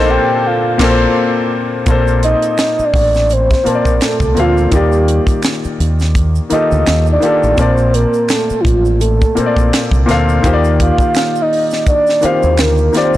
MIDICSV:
0, 0, Header, 1, 7, 480
1, 0, Start_track
1, 0, Key_signature, -2, "major"
1, 0, Tempo, 714286
1, 1256, Time_signature, 4, 2, 24, 8
1, 8852, End_track
2, 0, Start_track
2, 0, Title_t, "Soft synth lead"
2, 0, Program_c, 0, 80
2, 0, Note_on_c, 0, 75, 87
2, 64, Note_on_c, 0, 79, 95
2, 75, Note_off_c, 0, 75, 0
2, 311, Note_on_c, 0, 77, 84
2, 321, Note_off_c, 0, 79, 0
2, 1024, Note_off_c, 0, 77, 0
2, 1506, Note_on_c, 0, 75, 113
2, 1915, Note_on_c, 0, 74, 99
2, 1925, Note_off_c, 0, 75, 0
2, 2234, Note_on_c, 0, 72, 96
2, 2244, Note_off_c, 0, 74, 0
2, 2475, Note_on_c, 0, 70, 91
2, 2485, Note_off_c, 0, 72, 0
2, 2712, Note_on_c, 0, 69, 92
2, 2722, Note_off_c, 0, 70, 0
2, 2954, Note_on_c, 0, 65, 85
2, 2964, Note_off_c, 0, 69, 0
2, 3185, Note_off_c, 0, 65, 0
2, 3195, Note_on_c, 0, 67, 81
2, 3638, Note_off_c, 0, 67, 0
2, 4383, Note_on_c, 0, 75, 105
2, 4753, Note_off_c, 0, 75, 0
2, 4786, Note_on_c, 0, 74, 97
2, 5105, Note_on_c, 0, 72, 101
2, 5115, Note_off_c, 0, 74, 0
2, 5334, Note_on_c, 0, 70, 98
2, 5344, Note_off_c, 0, 72, 0
2, 5576, Note_on_c, 0, 69, 89
2, 5586, Note_off_c, 0, 70, 0
2, 5783, Note_on_c, 0, 64, 63
2, 5793, Note_off_c, 0, 69, 0
2, 5816, Note_on_c, 0, 65, 86
2, 5826, Note_off_c, 0, 64, 0
2, 6052, Note_off_c, 0, 65, 0
2, 6056, Note_on_c, 0, 69, 83
2, 6509, Note_off_c, 0, 69, 0
2, 7268, Note_on_c, 0, 77, 119
2, 7671, Note_on_c, 0, 75, 106
2, 7681, Note_off_c, 0, 77, 0
2, 7983, Note_on_c, 0, 74, 91
2, 7993, Note_off_c, 0, 75, 0
2, 8226, Note_on_c, 0, 72, 92
2, 8236, Note_off_c, 0, 74, 0
2, 8464, Note_on_c, 0, 70, 86
2, 8474, Note_off_c, 0, 72, 0
2, 8713, Note_on_c, 0, 72, 92
2, 8723, Note_off_c, 0, 70, 0
2, 8852, Note_off_c, 0, 72, 0
2, 8852, End_track
3, 0, Start_track
3, 0, Title_t, "Grand piano"
3, 0, Program_c, 1, 0
3, 0, Control_c, 1, 64, 127
3, 0, Note_on_c, 1, 46, 92
3, 0, Note_on_c, 1, 58, 93
3, 0, Note_on_c, 1, 60, 93
3, 0, Note_on_c, 1, 69, 89
3, 0, Note_on_c, 1, 72, 99
3, 0, Note_on_c, 1, 74, 82
3, 106, Note_off_c, 1, 46, 0
3, 110, Note_off_c, 1, 58, 0
3, 114, Note_off_c, 1, 60, 0
3, 120, Note_off_c, 1, 69, 0
3, 124, Note_off_c, 1, 72, 0
3, 525, Note_on_c, 1, 46, 94
3, 536, Note_on_c, 1, 58, 94
3, 543, Note_on_c, 1, 60, 100
3, 552, Note_on_c, 1, 69, 95
3, 604, Note_on_c, 1, 72, 96
3, 699, Note_off_c, 1, 46, 0
3, 705, Note_off_c, 1, 58, 0
3, 709, Note_off_c, 1, 60, 0
3, 714, Note_off_c, 1, 69, 0
3, 744, Note_off_c, 1, 72, 0
3, 1251, Note_on_c, 1, 46, 77
3, 1258, Note_on_c, 1, 58, 72
3, 1265, Control_c, 1, 64, 0
3, 1267, Note_on_c, 1, 60, 71
3, 1270, Note_off_c, 1, 74, 0
3, 1274, Note_on_c, 1, 69, 75
3, 1282, Note_on_c, 1, 72, 88
3, 1396, Control_c, 1, 64, 127
3, 2014, Note_off_c, 1, 46, 0
3, 2017, Note_off_c, 1, 58, 0
3, 2022, Note_off_c, 1, 60, 0
3, 2025, Note_off_c, 1, 69, 0
3, 2029, Note_off_c, 1, 72, 0
3, 2445, Note_on_c, 1, 46, 63
3, 2453, Note_on_c, 1, 58, 58
3, 2461, Note_on_c, 1, 60, 57
3, 2468, Note_on_c, 1, 81, 58
3, 2477, Note_on_c, 1, 72, 58
3, 2516, Note_off_c, 1, 72, 0
3, 2520, Note_on_c, 1, 74, 70
3, 2843, Note_off_c, 1, 46, 0
3, 2847, Note_off_c, 1, 58, 0
3, 2851, Note_off_c, 1, 60, 0
3, 2854, Note_off_c, 1, 81, 0
3, 2880, Note_off_c, 1, 74, 0
3, 2922, Note_on_c, 1, 46, 65
3, 2932, Note_on_c, 1, 58, 65
3, 2936, Note_on_c, 1, 60, 61
3, 2945, Note_on_c, 1, 69, 60
3, 2953, Note_on_c, 1, 77, 74
3, 3125, Note_off_c, 1, 46, 0
3, 3130, Note_off_c, 1, 58, 0
3, 3132, Note_off_c, 1, 60, 0
3, 3137, Note_off_c, 1, 69, 0
3, 3141, Note_off_c, 1, 77, 0
3, 3163, Note_on_c, 1, 51, 69
3, 3171, Note_on_c, 1, 58, 66
3, 3178, Note_on_c, 1, 65, 63
3, 3186, Control_c, 1, 64, 0
3, 3187, Note_on_c, 1, 67, 62
3, 3195, Note_on_c, 1, 74, 75
3, 3293, Control_c, 1, 64, 127
3, 3930, Note_off_c, 1, 51, 0
3, 3934, Note_off_c, 1, 58, 0
3, 3937, Note_off_c, 1, 65, 0
3, 3942, Note_off_c, 1, 67, 0
3, 3946, Note_off_c, 1, 74, 0
3, 4365, Note_on_c, 1, 51, 63
3, 4372, Note_on_c, 1, 58, 60
3, 4382, Note_on_c, 1, 65, 61
3, 4389, Note_on_c, 1, 67, 61
3, 4398, Note_on_c, 1, 69, 68
3, 4763, Note_off_c, 1, 51, 0
3, 4766, Note_off_c, 1, 58, 0
3, 4771, Note_off_c, 1, 65, 0
3, 4775, Note_off_c, 1, 67, 0
3, 4779, Note_off_c, 1, 69, 0
3, 4840, Note_on_c, 1, 51, 72
3, 4849, Note_on_c, 1, 58, 63
3, 4857, Note_on_c, 1, 65, 66
3, 4863, Note_on_c, 1, 67, 65
3, 4873, Note_on_c, 1, 69, 75
3, 5044, Note_off_c, 1, 51, 0
3, 5049, Note_off_c, 1, 58, 0
3, 5053, Note_off_c, 1, 65, 0
3, 5056, Note_off_c, 1, 67, 0
3, 5061, Note_off_c, 1, 69, 0
3, 5082, Note_on_c, 1, 46, 70
3, 5091, Note_on_c, 1, 58, 62
3, 5099, Note_on_c, 1, 60, 61
3, 5105, Control_c, 1, 64, 0
3, 5107, Note_on_c, 1, 81, 61
3, 5116, Note_on_c, 1, 74, 72
3, 5205, Control_c, 1, 64, 127
3, 5849, Note_off_c, 1, 46, 0
3, 5854, Note_off_c, 1, 58, 0
3, 5858, Note_off_c, 1, 60, 0
3, 5861, Note_off_c, 1, 81, 0
3, 5866, Note_off_c, 1, 74, 0
3, 6285, Note_on_c, 1, 46, 65
3, 6289, Note_on_c, 1, 58, 58
3, 6300, Note_on_c, 1, 60, 58
3, 6307, Note_on_c, 1, 69, 61
3, 6314, Note_on_c, 1, 72, 55
3, 6355, Note_off_c, 1, 72, 0
3, 6359, Note_on_c, 1, 74, 77
3, 6683, Note_off_c, 1, 46, 0
3, 6685, Note_off_c, 1, 58, 0
3, 6690, Note_off_c, 1, 60, 0
3, 6694, Note_off_c, 1, 69, 0
3, 6720, Note_off_c, 1, 74, 0
3, 6761, Note_on_c, 1, 46, 85
3, 6771, Note_on_c, 1, 58, 78
3, 6777, Note_on_c, 1, 60, 77
3, 6787, Note_on_c, 1, 69, 76
3, 6792, Note_on_c, 1, 77, 90
3, 6964, Note_off_c, 1, 46, 0
3, 6969, Note_off_c, 1, 58, 0
3, 6972, Note_off_c, 1, 60, 0
3, 6978, Note_off_c, 1, 69, 0
3, 6980, Note_off_c, 1, 77, 0
3, 7004, Note_on_c, 1, 51, 84
3, 7013, Note_on_c, 1, 58, 75
3, 7018, Note_on_c, 1, 65, 71
3, 7024, Control_c, 1, 64, 0
3, 7026, Note_on_c, 1, 67, 74
3, 7035, Note_on_c, 1, 72, 75
3, 7075, Note_off_c, 1, 72, 0
3, 7080, Note_on_c, 1, 74, 89
3, 7159, Control_c, 1, 64, 127
3, 7770, Note_off_c, 1, 51, 0
3, 7775, Note_off_c, 1, 58, 0
3, 7777, Note_off_c, 1, 65, 0
3, 7781, Note_off_c, 1, 67, 0
3, 7808, Note_off_c, 1, 74, 0
3, 8203, Note_on_c, 1, 51, 66
3, 8211, Note_on_c, 1, 58, 59
3, 8218, Note_on_c, 1, 65, 60
3, 8227, Note_on_c, 1, 67, 59
3, 8234, Note_on_c, 1, 77, 70
3, 8602, Note_off_c, 1, 51, 0
3, 8606, Note_off_c, 1, 58, 0
3, 8609, Note_off_c, 1, 65, 0
3, 8614, Note_off_c, 1, 67, 0
3, 8617, Note_off_c, 1, 77, 0
3, 8685, Note_on_c, 1, 51, 67
3, 8693, Note_on_c, 1, 58, 66
3, 8703, Note_on_c, 1, 65, 65
3, 8711, Note_on_c, 1, 67, 62
3, 8717, Note_on_c, 1, 74, 77
3, 8852, Note_off_c, 1, 51, 0
3, 8852, Note_off_c, 1, 58, 0
3, 8852, Note_off_c, 1, 65, 0
3, 8852, Note_off_c, 1, 67, 0
3, 8852, Note_off_c, 1, 74, 0
3, 8852, End_track
4, 0, Start_track
4, 0, Title_t, "String section"
4, 0, Program_c, 2, 48
4, 0, Note_on_c, 2, 48, 78
4, 0, Note_on_c, 2, 50, 81
4, 0, Note_on_c, 2, 69, 70
4, 1228, Note_off_c, 2, 48, 0
4, 1230, Note_off_c, 2, 69, 0
4, 1231, Note_off_c, 2, 50, 0
4, 8852, End_track
5, 0, Start_track
5, 0, Title_t, "Fingered electric bass"
5, 0, Program_c, 3, 33
5, 0, Note_on_c, 3, 34, 90
5, 112, Note_off_c, 3, 34, 0
5, 538, Note_on_c, 3, 34, 94
5, 706, Note_off_c, 3, 34, 0
5, 1258, Note_on_c, 3, 34, 91
5, 1566, Note_off_c, 3, 34, 0
5, 1977, Note_on_c, 3, 33, 81
5, 2369, Note_off_c, 3, 33, 0
5, 2593, Note_on_c, 3, 34, 76
5, 2677, Note_off_c, 3, 34, 0
5, 2827, Note_on_c, 3, 36, 82
5, 2914, Note_off_c, 3, 36, 0
5, 2936, Note_on_c, 3, 38, 80
5, 3132, Note_off_c, 3, 38, 0
5, 3175, Note_on_c, 3, 39, 96
5, 3484, Note_off_c, 3, 39, 0
5, 3898, Note_on_c, 3, 39, 83
5, 4290, Note_off_c, 3, 39, 0
5, 4516, Note_on_c, 3, 38, 75
5, 4599, Note_off_c, 3, 38, 0
5, 4620, Note_on_c, 3, 39, 80
5, 4815, Note_off_c, 3, 39, 0
5, 4996, Note_on_c, 3, 33, 81
5, 5079, Note_off_c, 3, 33, 0
5, 5096, Note_on_c, 3, 34, 94
5, 5405, Note_off_c, 3, 34, 0
5, 5815, Note_on_c, 3, 33, 77
5, 6209, Note_off_c, 3, 33, 0
5, 6432, Note_on_c, 3, 34, 73
5, 6517, Note_off_c, 3, 34, 0
5, 6664, Note_on_c, 3, 36, 77
5, 6752, Note_off_c, 3, 36, 0
5, 6782, Note_on_c, 3, 38, 80
5, 6976, Note_off_c, 3, 38, 0
5, 7020, Note_on_c, 3, 39, 103
5, 7327, Note_off_c, 3, 39, 0
5, 8357, Note_on_c, 3, 39, 81
5, 8461, Note_off_c, 3, 39, 0
5, 8461, Note_on_c, 3, 38, 89
5, 8655, Note_off_c, 3, 38, 0
5, 8852, End_track
6, 0, Start_track
6, 0, Title_t, "Muted fingered electric bass strokes"
6, 1876, Note_on_c, 9, 29, 39
6, 1943, Note_off_c, 9, 29, 0
6, 2463, Note_on_c, 9, 29, 43
6, 2531, Note_off_c, 9, 29, 0
6, 3798, Note_on_c, 9, 29, 41
6, 3865, Note_off_c, 9, 29, 0
6, 4379, Note_on_c, 9, 29, 46
6, 4446, Note_off_c, 9, 29, 0
6, 5716, Note_on_c, 9, 29, 39
6, 5783, Note_off_c, 9, 29, 0
6, 6301, Note_on_c, 9, 29, 45
6, 6368, Note_off_c, 9, 29, 0
6, 8224, Note_on_c, 9, 29, 43
6, 8291, Note_off_c, 9, 29, 0
6, 8852, End_track
7, 0, Start_track
7, 0, Title_t, "Drums"
7, 531, Note_on_c, 9, 49, 82
7, 534, Note_on_c, 9, 36, 99
7, 538, Note_on_c, 9, 38, 100
7, 598, Note_off_c, 9, 49, 0
7, 602, Note_off_c, 9, 36, 0
7, 606, Note_off_c, 9, 38, 0
7, 1250, Note_on_c, 9, 42, 64
7, 1254, Note_on_c, 9, 36, 102
7, 1256, Note_on_c, 9, 82, 65
7, 1318, Note_off_c, 9, 42, 0
7, 1321, Note_off_c, 9, 36, 0
7, 1324, Note_off_c, 9, 82, 0
7, 1394, Note_on_c, 9, 82, 44
7, 1461, Note_off_c, 9, 82, 0
7, 1498, Note_on_c, 9, 42, 65
7, 1565, Note_off_c, 9, 42, 0
7, 1629, Note_on_c, 9, 42, 46
7, 1631, Note_on_c, 9, 82, 42
7, 1697, Note_off_c, 9, 42, 0
7, 1698, Note_off_c, 9, 82, 0
7, 1732, Note_on_c, 9, 26, 64
7, 1732, Note_on_c, 9, 82, 68
7, 1738, Note_on_c, 9, 42, 66
7, 1739, Note_on_c, 9, 38, 97
7, 1799, Note_off_c, 9, 26, 0
7, 1799, Note_off_c, 9, 82, 0
7, 1805, Note_off_c, 9, 42, 0
7, 1806, Note_off_c, 9, 38, 0
7, 1875, Note_on_c, 9, 82, 41
7, 1942, Note_off_c, 9, 82, 0
7, 1973, Note_on_c, 9, 36, 85
7, 1985, Note_on_c, 9, 46, 45
7, 2041, Note_off_c, 9, 36, 0
7, 2052, Note_off_c, 9, 46, 0
7, 2110, Note_on_c, 9, 82, 45
7, 2124, Note_on_c, 9, 38, 29
7, 2177, Note_off_c, 9, 82, 0
7, 2191, Note_off_c, 9, 38, 0
7, 2213, Note_on_c, 9, 82, 54
7, 2222, Note_on_c, 9, 42, 63
7, 2280, Note_off_c, 9, 82, 0
7, 2289, Note_off_c, 9, 42, 0
7, 2355, Note_on_c, 9, 82, 38
7, 2357, Note_on_c, 9, 36, 81
7, 2370, Note_on_c, 9, 38, 31
7, 2423, Note_off_c, 9, 82, 0
7, 2424, Note_off_c, 9, 36, 0
7, 2437, Note_off_c, 9, 38, 0
7, 2458, Note_on_c, 9, 82, 41
7, 2462, Note_on_c, 9, 42, 65
7, 2525, Note_off_c, 9, 82, 0
7, 2529, Note_off_c, 9, 42, 0
7, 2590, Note_on_c, 9, 36, 69
7, 2595, Note_on_c, 9, 82, 49
7, 2657, Note_off_c, 9, 36, 0
7, 2662, Note_off_c, 9, 82, 0
7, 2695, Note_on_c, 9, 26, 67
7, 2695, Note_on_c, 9, 82, 65
7, 2698, Note_on_c, 9, 42, 82
7, 2702, Note_on_c, 9, 38, 92
7, 2762, Note_off_c, 9, 26, 0
7, 2762, Note_off_c, 9, 82, 0
7, 2766, Note_off_c, 9, 42, 0
7, 2769, Note_off_c, 9, 38, 0
7, 2823, Note_on_c, 9, 36, 85
7, 2831, Note_on_c, 9, 82, 43
7, 2891, Note_off_c, 9, 36, 0
7, 2898, Note_off_c, 9, 82, 0
7, 2934, Note_on_c, 9, 82, 39
7, 2935, Note_on_c, 9, 42, 56
7, 3001, Note_off_c, 9, 82, 0
7, 3003, Note_off_c, 9, 42, 0
7, 3074, Note_on_c, 9, 82, 41
7, 3141, Note_off_c, 9, 82, 0
7, 3169, Note_on_c, 9, 42, 67
7, 3172, Note_on_c, 9, 36, 95
7, 3174, Note_on_c, 9, 82, 62
7, 3236, Note_off_c, 9, 42, 0
7, 3240, Note_off_c, 9, 36, 0
7, 3241, Note_off_c, 9, 82, 0
7, 3307, Note_on_c, 9, 82, 45
7, 3374, Note_off_c, 9, 82, 0
7, 3415, Note_on_c, 9, 42, 67
7, 3482, Note_off_c, 9, 42, 0
7, 3539, Note_on_c, 9, 36, 79
7, 3544, Note_on_c, 9, 82, 41
7, 3547, Note_on_c, 9, 42, 47
7, 3607, Note_off_c, 9, 36, 0
7, 3611, Note_off_c, 9, 82, 0
7, 3614, Note_off_c, 9, 42, 0
7, 3646, Note_on_c, 9, 26, 70
7, 3646, Note_on_c, 9, 82, 68
7, 3659, Note_on_c, 9, 42, 68
7, 3660, Note_on_c, 9, 38, 97
7, 3713, Note_off_c, 9, 26, 0
7, 3713, Note_off_c, 9, 82, 0
7, 3726, Note_off_c, 9, 42, 0
7, 3727, Note_off_c, 9, 38, 0
7, 3791, Note_on_c, 9, 82, 40
7, 3858, Note_off_c, 9, 82, 0
7, 3900, Note_on_c, 9, 42, 59
7, 3967, Note_off_c, 9, 42, 0
7, 4027, Note_on_c, 9, 82, 47
7, 4039, Note_on_c, 9, 38, 31
7, 4095, Note_off_c, 9, 82, 0
7, 4107, Note_off_c, 9, 38, 0
7, 4132, Note_on_c, 9, 82, 55
7, 4134, Note_on_c, 9, 36, 90
7, 4135, Note_on_c, 9, 42, 63
7, 4199, Note_off_c, 9, 82, 0
7, 4201, Note_off_c, 9, 36, 0
7, 4202, Note_off_c, 9, 42, 0
7, 4270, Note_on_c, 9, 82, 40
7, 4337, Note_off_c, 9, 82, 0
7, 4371, Note_on_c, 9, 42, 67
7, 4371, Note_on_c, 9, 82, 42
7, 4438, Note_off_c, 9, 42, 0
7, 4438, Note_off_c, 9, 82, 0
7, 4512, Note_on_c, 9, 82, 50
7, 4579, Note_off_c, 9, 82, 0
7, 4613, Note_on_c, 9, 26, 69
7, 4613, Note_on_c, 9, 82, 63
7, 4616, Note_on_c, 9, 42, 82
7, 4620, Note_on_c, 9, 38, 97
7, 4680, Note_off_c, 9, 26, 0
7, 4680, Note_off_c, 9, 82, 0
7, 4683, Note_off_c, 9, 42, 0
7, 4687, Note_off_c, 9, 38, 0
7, 4745, Note_on_c, 9, 82, 43
7, 4812, Note_off_c, 9, 82, 0
7, 4851, Note_on_c, 9, 82, 41
7, 4855, Note_on_c, 9, 42, 55
7, 4918, Note_off_c, 9, 82, 0
7, 4922, Note_off_c, 9, 42, 0
7, 4993, Note_on_c, 9, 82, 44
7, 5060, Note_off_c, 9, 82, 0
7, 5090, Note_on_c, 9, 82, 66
7, 5091, Note_on_c, 9, 42, 68
7, 5093, Note_on_c, 9, 36, 100
7, 5157, Note_off_c, 9, 82, 0
7, 5159, Note_off_c, 9, 42, 0
7, 5161, Note_off_c, 9, 36, 0
7, 5224, Note_on_c, 9, 82, 47
7, 5291, Note_off_c, 9, 82, 0
7, 5336, Note_on_c, 9, 42, 68
7, 5404, Note_off_c, 9, 42, 0
7, 5467, Note_on_c, 9, 82, 43
7, 5534, Note_off_c, 9, 82, 0
7, 5568, Note_on_c, 9, 26, 69
7, 5568, Note_on_c, 9, 82, 69
7, 5577, Note_on_c, 9, 42, 73
7, 5578, Note_on_c, 9, 38, 102
7, 5636, Note_off_c, 9, 26, 0
7, 5636, Note_off_c, 9, 82, 0
7, 5645, Note_off_c, 9, 42, 0
7, 5646, Note_off_c, 9, 38, 0
7, 5710, Note_on_c, 9, 82, 44
7, 5777, Note_off_c, 9, 82, 0
7, 5812, Note_on_c, 9, 36, 86
7, 5824, Note_on_c, 9, 42, 62
7, 5879, Note_off_c, 9, 36, 0
7, 5891, Note_off_c, 9, 42, 0
7, 5948, Note_on_c, 9, 82, 44
7, 6016, Note_off_c, 9, 82, 0
7, 6053, Note_on_c, 9, 82, 57
7, 6055, Note_on_c, 9, 42, 62
7, 6120, Note_off_c, 9, 82, 0
7, 6123, Note_off_c, 9, 42, 0
7, 6192, Note_on_c, 9, 82, 42
7, 6194, Note_on_c, 9, 36, 84
7, 6259, Note_off_c, 9, 82, 0
7, 6261, Note_off_c, 9, 36, 0
7, 6295, Note_on_c, 9, 42, 68
7, 6297, Note_on_c, 9, 82, 42
7, 6362, Note_off_c, 9, 42, 0
7, 6364, Note_off_c, 9, 82, 0
7, 6428, Note_on_c, 9, 36, 68
7, 6439, Note_on_c, 9, 82, 46
7, 6495, Note_off_c, 9, 36, 0
7, 6506, Note_off_c, 9, 82, 0
7, 6540, Note_on_c, 9, 42, 88
7, 6541, Note_on_c, 9, 26, 71
7, 6541, Note_on_c, 9, 82, 68
7, 6544, Note_on_c, 9, 38, 96
7, 6608, Note_off_c, 9, 26, 0
7, 6608, Note_off_c, 9, 42, 0
7, 6608, Note_off_c, 9, 82, 0
7, 6611, Note_off_c, 9, 38, 0
7, 6663, Note_on_c, 9, 36, 93
7, 6672, Note_on_c, 9, 82, 41
7, 6730, Note_off_c, 9, 36, 0
7, 6740, Note_off_c, 9, 82, 0
7, 6777, Note_on_c, 9, 82, 38
7, 6779, Note_on_c, 9, 42, 60
7, 6788, Note_on_c, 9, 38, 32
7, 6844, Note_off_c, 9, 82, 0
7, 6846, Note_off_c, 9, 42, 0
7, 6855, Note_off_c, 9, 38, 0
7, 6914, Note_on_c, 9, 82, 45
7, 6981, Note_off_c, 9, 82, 0
7, 7016, Note_on_c, 9, 36, 98
7, 7017, Note_on_c, 9, 82, 61
7, 7018, Note_on_c, 9, 42, 72
7, 7083, Note_off_c, 9, 36, 0
7, 7084, Note_off_c, 9, 82, 0
7, 7085, Note_off_c, 9, 42, 0
7, 7151, Note_on_c, 9, 82, 46
7, 7218, Note_off_c, 9, 82, 0
7, 7257, Note_on_c, 9, 36, 88
7, 7258, Note_on_c, 9, 42, 68
7, 7324, Note_off_c, 9, 36, 0
7, 7325, Note_off_c, 9, 42, 0
7, 7381, Note_on_c, 9, 36, 82
7, 7388, Note_on_c, 9, 82, 44
7, 7449, Note_off_c, 9, 36, 0
7, 7456, Note_off_c, 9, 82, 0
7, 7490, Note_on_c, 9, 26, 71
7, 7490, Note_on_c, 9, 82, 68
7, 7503, Note_on_c, 9, 42, 72
7, 7504, Note_on_c, 9, 38, 98
7, 7558, Note_off_c, 9, 26, 0
7, 7558, Note_off_c, 9, 82, 0
7, 7570, Note_off_c, 9, 42, 0
7, 7571, Note_off_c, 9, 38, 0
7, 7631, Note_on_c, 9, 82, 41
7, 7698, Note_off_c, 9, 82, 0
7, 7747, Note_on_c, 9, 46, 42
7, 7814, Note_off_c, 9, 46, 0
7, 7868, Note_on_c, 9, 82, 47
7, 7881, Note_on_c, 9, 38, 31
7, 7935, Note_off_c, 9, 82, 0
7, 7948, Note_off_c, 9, 38, 0
7, 7971, Note_on_c, 9, 82, 56
7, 7974, Note_on_c, 9, 36, 85
7, 7976, Note_on_c, 9, 42, 62
7, 8038, Note_off_c, 9, 82, 0
7, 8041, Note_off_c, 9, 36, 0
7, 8043, Note_off_c, 9, 42, 0
7, 8109, Note_on_c, 9, 82, 42
7, 8126, Note_on_c, 9, 38, 32
7, 8176, Note_off_c, 9, 82, 0
7, 8194, Note_off_c, 9, 38, 0
7, 8208, Note_on_c, 9, 82, 46
7, 8216, Note_on_c, 9, 42, 63
7, 8275, Note_off_c, 9, 82, 0
7, 8284, Note_off_c, 9, 42, 0
7, 8351, Note_on_c, 9, 82, 47
7, 8418, Note_off_c, 9, 82, 0
7, 8450, Note_on_c, 9, 26, 67
7, 8450, Note_on_c, 9, 82, 67
7, 8457, Note_on_c, 9, 42, 81
7, 8460, Note_on_c, 9, 38, 98
7, 8518, Note_off_c, 9, 26, 0
7, 8518, Note_off_c, 9, 82, 0
7, 8524, Note_off_c, 9, 42, 0
7, 8528, Note_off_c, 9, 38, 0
7, 8586, Note_on_c, 9, 82, 43
7, 8653, Note_off_c, 9, 82, 0
7, 8690, Note_on_c, 9, 82, 40
7, 8699, Note_on_c, 9, 42, 61
7, 8708, Note_on_c, 9, 38, 34
7, 8757, Note_off_c, 9, 82, 0
7, 8766, Note_off_c, 9, 42, 0
7, 8775, Note_off_c, 9, 38, 0
7, 8830, Note_on_c, 9, 82, 44
7, 8852, Note_off_c, 9, 82, 0
7, 8852, End_track
0, 0, End_of_file